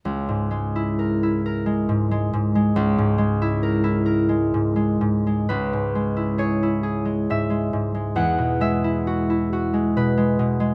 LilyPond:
<<
  \new Staff \with { instrumentName = "Harp" } { \time 3/4 \key cis \minor \tempo 4 = 68 r2. | r2. | b'4 cis''4 e''4 | fis''8 e''4. b'4 | }
  \new Staff \with { instrumentName = "Harp" } { \clef bass \time 3/4 \key cis \minor cis,16 gis,16 gis16 e'16 ais'16 e'16 ais'16 gis16 gis,16 gis16 gis,16 gis16 | cis,16 gis,16 gis16 e'16 ais'16 e'16 ais'16 gis16 gis,16 gis16 gis,16 gis16 | cis,16 gis,16 gis16 e'16 gis'16 e'16 gis'16 gis16 gis,16 gis16 gis,16 gis16 | e,16 b,16 gis16 e'16 fis'16 e'16 fis'16 gis16 b,16 gis16 b,16 gis16 | }
>>